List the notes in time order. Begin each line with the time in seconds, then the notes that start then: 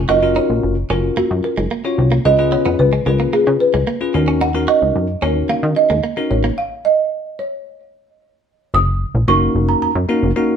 0.09 F#1 C#4 F4 F#4 A#4 D#5
0.22 C#4 F4 F#4 A#4, muted clean electric guitar stroke
0.36 D#4 C#5
0.50 A#1
0.63 F#1
0.90 F#1 C#4 F4 F#4 A#4
1.17 F#2 A#3 F#4
1.31 F#2
1.44 A#4, muted clean electric guitar stroke
1.58 F#1 G#3
1.71 A#3
1.85 C#4 F4 F#4 C#5, muted clean electric guitar stroke
1.98 C2
2.12 A#3
2.25 C#2 C#4 F4 G#4 B4 D#5
2.39 C#4 F4 G#4 B4, muted clean electric guitar stroke
2.52 B3 C#5
2.66 F2 B3
2.79 C#2 B4
2.93 G#3
3.06 C#2 C#4 F4 G#4 A#4 B4, muted clean electric guitar stroke
3.20 A#3
3.33 C#3 A#3 G#4
3.47 C#3, muted clean electric guitar stroke
3.60 B4
3.74 C#2 G#3
3.87 A#3
4.01 C#4 F4 G#4 B4
4.14 D#2 C#4 D#4 F#4 A#4, muted clean electric guitar stroke
4.28 C#4
4.41 D#4 F#5
4.55 C#4 D#4 F#4 A#4, muted clean electric guitar stroke
4.68 F#4 D#5
4.82 C#2
4.95 F#2
5.22 D#2 C#4 D#4 F#4 A#4 C#5
5.49 D#3 A#3 F5
5.63 D#3
5.76 D#5, muted clean electric guitar stroke
5.90 D#2 G#3
6.04 A#3
6.17 C#4 D#4 F#4 A#4, muted clean electric guitar stroke
6.30 A1 C#5
6.44 A#3
6.58 F5
6.85 D#5
7.39 C#5
8.74 F#1 D#6
9.15 A#1
9.28 F#1 A#3 C#4 D#4 F#4 A#4 C#6
9.55 F#1
9.69 A#5
9.82 F#2 A#5
9.95 F#2
10.09 A#3 C#4 D#4 F#4 A#4
10.23 F#1
10.36 A#3 C#4 D#4 F#4 A#4